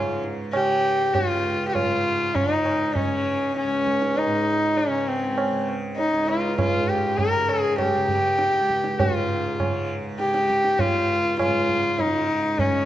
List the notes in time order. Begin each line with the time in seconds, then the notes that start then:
Already playing: C#2 G#2 C#3 F4
0.24 tabla te
0.53 C#3 G4, tabla na
1.14 C#2 F4, tabla tin, tabla ge
1.68 G4
1.74 F4, tabla na, tabla ge
1.79 G#2
2.34 C#4, tabla tin, tabla ge
2.41 C#3
2.52 D#4
2.65 tabla na
2.96 C#4, tabla tin, tabla ge
3.04 C#3
3.56 C#4, tabla te
3.65 C#2
3.72 tabla te
3.87 tabla ke
4.02 tabla te
4.17 D#4, tabla tin
4.26 G#2
4.77 C#4, tabla tin
4.89 C#3
5.08 C4
5.38 tabla na
5.51 C#3
5.69 tabla na
5.97 D#4, tabla tin
6.12 C#2
6.28 F4, tabla na
6.59 F4, tabla na, tabla ge
6.75 G#2
6.88 G4
7.18 A#4, tabla tin, tabla ge
7.36 C#3
7.49 G#4, tabla na
7.78 G4, tabla na, tabla ge
7.97 C#3
8.08 tabla ge
8.39 tabla te
8.54 tabla te
8.60 C#2
8.70 tabla ke
8.84 tabla te
9.00 G#2 F4, tabla tin, tabla ge
9.60 C#3, tabla na, tabla ge
10.19 G4, tabla te
10.24 C#3
10.34 tabla te
10.50 tabla ke
10.64 tabla te
10.79 F4, tabla tin, tabla ge
10.83 C#2
11.39 F4, tabla na, tabla ge
11.45 G#2
11.69 tabla ge
11.99 D#4, tabla tin, tabla ge
12.05 C#3
12.59 C#4, tabla tin, tabla ge
12.67 C#3